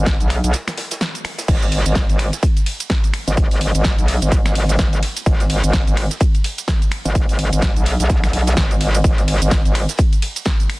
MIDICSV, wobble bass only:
0, 0, Header, 1, 2, 480
1, 0, Start_track
1, 0, Key_signature, 5, "minor"
1, 0, Tempo, 472441
1, 1507, Time_signature, 4, 2, 24, 8
1, 10968, End_track
2, 0, Start_track
2, 0, Title_t, "Wobble bass"
2, 0, Program_c, 0, 39
2, 0, Note_on_c, 0, 32, 90
2, 185, Note_off_c, 0, 32, 0
2, 207, Note_on_c, 0, 35, 98
2, 425, Note_off_c, 0, 35, 0
2, 446, Note_on_c, 0, 35, 103
2, 546, Note_off_c, 0, 35, 0
2, 1507, Note_on_c, 0, 32, 98
2, 1865, Note_off_c, 0, 32, 0
2, 1889, Note_on_c, 0, 32, 97
2, 2106, Note_off_c, 0, 32, 0
2, 2129, Note_on_c, 0, 32, 103
2, 2346, Note_off_c, 0, 32, 0
2, 3328, Note_on_c, 0, 32, 93
2, 3785, Note_off_c, 0, 32, 0
2, 3809, Note_on_c, 0, 32, 96
2, 4026, Note_off_c, 0, 32, 0
2, 4049, Note_on_c, 0, 35, 100
2, 4266, Note_off_c, 0, 35, 0
2, 4289, Note_on_c, 0, 32, 101
2, 4612, Note_off_c, 0, 32, 0
2, 4626, Note_on_c, 0, 32, 96
2, 5091, Note_off_c, 0, 32, 0
2, 5346, Note_on_c, 0, 32, 99
2, 5705, Note_off_c, 0, 32, 0
2, 5727, Note_on_c, 0, 32, 97
2, 5945, Note_off_c, 0, 32, 0
2, 5967, Note_on_c, 0, 32, 98
2, 6185, Note_off_c, 0, 32, 0
2, 7167, Note_on_c, 0, 32, 99
2, 7625, Note_off_c, 0, 32, 0
2, 7648, Note_on_c, 0, 32, 91
2, 7865, Note_off_c, 0, 32, 0
2, 7888, Note_on_c, 0, 35, 101
2, 8105, Note_off_c, 0, 35, 0
2, 8128, Note_on_c, 0, 35, 102
2, 8451, Note_off_c, 0, 35, 0
2, 8468, Note_on_c, 0, 35, 100
2, 8691, Note_off_c, 0, 35, 0
2, 8707, Note_on_c, 0, 32, 99
2, 9171, Note_off_c, 0, 32, 0
2, 9187, Note_on_c, 0, 32, 99
2, 9545, Note_off_c, 0, 32, 0
2, 9567, Note_on_c, 0, 32, 90
2, 9785, Note_off_c, 0, 32, 0
2, 9808, Note_on_c, 0, 32, 99
2, 10025, Note_off_c, 0, 32, 0
2, 10968, End_track
0, 0, End_of_file